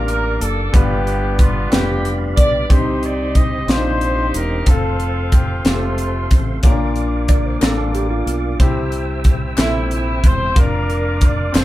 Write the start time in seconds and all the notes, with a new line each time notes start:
Already playing: A1 A#2 A#3 D4 F4 G4 A#4 D5 F5 A5 D6
0.08 A#4, closed hi-hat
0.40 F#1 A4, closed hi-hat
0.73 G1 G2 G3 B3 D4 F4 G4 B4 B5, kick, closed hi-hat
1.07 closed hi-hat
1.39 F4, kick, closed hi-hat
1.71 F1 G3 B3 D4 F4 G4, snare, closed hi-hat
2.05 closed hi-hat
2.36 B1 D5, kick, closed hi-hat
2.69 C2 C3 C4 D4 D#4 G4 C5 C6, kick, closed hi-hat
2.77 D#4
3.02 D5, closed hi-hat
3.35 D#5, kick, closed hi-hat
3.67 A#1 C4 D4 F4 C5, snare, closed hi-hat
3.72 D#4 G4
4.01 closed hi-hat
4.34 E1 A#4, closed hi-hat
4.66 F1 C4 F4 A4 F5, kick, closed hi-hat
4.70 C4
5.00 closed hi-hat
5.32 G4, kick, closed hi-hat
5.65 F1 A3 C4 F4 G4, snare, closed hi-hat
5.74 A4
5.98 closed hi-hat
6.31 A1, kick, closed hi-hat
6.63 A#1 A#2 A#3 C#4 F4 A#4 D5 D6, kick, closed hi-hat
6.70 D4
6.96 closed hi-hat
7.28 D5, kick, closed hi-hat
7.46 C5
7.61 A1 D4 F4 A4 A#4, snare, clap, closed hi-hat
7.78 A4
7.94 G4, closed hi-hat
8.10 F4
8.26 B1, closed hi-hat
8.59 C2 C3 C4 E4 G4 C5 E5 G5 E6, kick, closed hi-hat
8.92 closed hi-hat
9.24 kick, closed hi-hat
9.57 A#1 C4 E4 A4, snare, clap, closed hi-hat
9.91 E4, closed hi-hat
10.23 E1 C5, kick, closed hi-hat
10.54 F1 C4 D4 F4 A#4 D5 F5 D6, kick, closed hi-hat
10.59 D4 F4
10.90 closed hi-hat
11.21 D5, kick, closed hi-hat
11.52 F1 C4 F4 A4 C5 C6, snare, clap, closed hi-hat